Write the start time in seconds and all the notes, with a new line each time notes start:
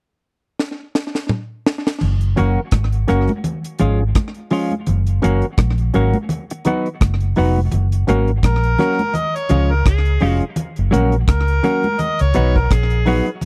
0.59 snare
0.95 snare
1.15 snare
1.29 mid tom
1.66 snare
1.87 snare
2.01 F#1, crash, low conga
2.21 closed hi-hat
2.36 F#1 F#3 A#3 C#4 F#4 A#4, closed hi-hat, low conga
2.71 G#1, kick, cross-stick, closed hi-hat, high conga
2.92 closed hi-hat
3.08 F#1 F#3 A#3 C#4 F#4 A#4, cross-stick, closed hi-hat
3.28 closed hi-hat, high conga
3.44 closed hi-hat, low conga
3.64 closed hi-hat
3.79 G#1 F3 G#3 C#4 F4 G#4, closed hi-hat, low conga
4.01 muted clean electric guitar stroke
4.15 kick, cross-stick, closed hi-hat, high conga
4.34 closed hi-hat
4.50 F3 G#3 C#4 F4 G#4, open hi-hat
4.71 closed hi-hat, high conga
4.87 F#1, closed hi-hat, low conga
5.07 closed hi-hat
5.22 F#1 F#3 A#3 C#4 F#4 A#4, closed hi-hat, low conga
5.42 closed hi-hat
5.58 A#1, kick, cross-stick, closed hi-hat, high conga
5.78 closed hi-hat
5.94 G#1 F#3 A#3 C#4 F#4 A#4, closed hi-hat
6.14 closed hi-hat, high conga
6.29 closed hi-hat, low conga
6.50 muted clean electric guitar stroke, closed hi-hat
6.65 F#3 B3 D#4 F#4 B4, closed hi-hat, low conga
6.86 closed hi-hat
7.01 F#1, kick, cross-stick, closed hi-hat, high conga
7.20 closed hi-hat
7.36 F1 F#3 B3 D#4 F#4 B4, open hi-hat
7.56 high conga
7.71 F#1, closed hi-hat, low conga
7.92 closed hi-hat
8.07 G#1 F#3 A#3 C#4 F#4 A#4, closed hi-hat, high conga, low conga
8.28 closed hi-hat
8.43 A#1 A#4, kick, cross-stick, closed hi-hat, high conga
8.63 closed hi-hat
8.79 F#3 A#3 C#4 F#4 A#4, cross-stick, closed hi-hat, low conga
8.99 closed hi-hat, high conga
9.14 D#5, closed hi-hat, low conga
9.36 C#5, closed hi-hat
9.49 C#2 F3 G#3 C#4 F4 G#4, closed hi-hat, low conga
9.72 A#4
9.86 C#2 G#4, kick, cross-stick, closed hi-hat
10.05 closed hi-hat
10.20 F1 F3 G#3 C#4 F4 G#4, open hi-hat
10.41 closed hi-hat
10.56 closed hi-hat, low conga
10.76 F#1, closed hi-hat
10.91 A#1 F#3 A#3 C#4 F#4 A#4, closed hi-hat, high conga, low conga
11.12 closed hi-hat
11.28 C#2 A#4, kick, cross-stick, closed hi-hat, high conga
11.48 closed hi-hat
11.63 F#3 A#3 C#4 F#4 A#4, closed hi-hat, low conga
11.83 closed hi-hat, high conga
11.99 D#5, closed hi-hat, low conga
12.19 C#2 C#5, closed hi-hat
12.34 B1 F#3 B3 D#4 F#4 B4, closed hi-hat, low conga
12.56 A#4, kick
12.71 A#1 G#4, kick, cross-stick, closed hi-hat
12.90 closed hi-hat
13.06 F#3 B3 D#4 F#4 B4, open hi-hat
13.26 muted clean electric guitar stroke, closed hi-hat
13.41 closed hi-hat, low conga